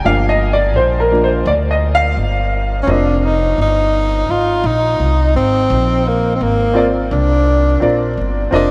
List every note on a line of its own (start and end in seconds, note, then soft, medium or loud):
0.04 0.75 G1 medium
0.04 1.07 F3 medium
0.04 1.07 A#3 medium
0.04 1.07 D4 medium
0.04 0.30 F5 loud
0.29 0.53 D#5 medium
0.53 0.77 D5 medium
0.75 1.43 A#1 medium
0.75 1.00 C5 medium
1.00 1.24 A#4 medium
1.11 1.43 F3 soft
1.11 1.44 A#3 soft
1.11 1.44 D4 medium
1.24 1.46 C5 medium
1.46 2.13 D2 loud
1.46 1.53 D5 medium
1.71 1.93 D#5 medium
1.95 2.85 F5 loud
2.17 2.84 G1 medium
2.83 3.31 C4 medium
2.83 2.92 C#4 medium
2.87 3.55 F1 loud
2.87 3.19 D4 medium
2.87 3.32 F4 medium
2.87 3.32 A#4 medium
2.87 3.33 D#5 medium
3.19 3.27 D4 medium
3.25 3.60 D#4 loud
3.58 4.25 G1 medium
3.58 4.32 D#4 loud
4.29 4.63 G#1 medium
4.29 4.68 F4 loud
4.64 4.98 A#1 loud
4.64 5.36 D#4 loud
5.00 5.33 C2 medium
5.35 5.69 G#1 medium
5.35 6.09 C4 loud
5.70 6.37 A#1 loud
6.08 6.35 A#3 medium
6.36 6.43 C4 medium
6.41 7.08 G#1 medium
6.41 6.87 A#3 medium
6.73 7.02 C4 medium
6.73 7.02 F4 medium
6.73 7.03 A#4 medium
6.73 7.03 D5 medium
7.11 7.78 C2 medium
7.11 8.14 D4 medium
7.80 8.16 A#1 medium
7.80 8.49 C4 medium
7.80 8.50 F4 medium
7.80 8.51 A#4 medium
7.80 8.53 D5 medium
8.17 8.51 G1 medium
8.51 8.71 F1 medium
8.51 8.71 C4 medium
8.51 8.71 D4 medium
8.51 8.71 F4 medium
8.51 8.71 A#4 medium
8.51 8.71 D#5 medium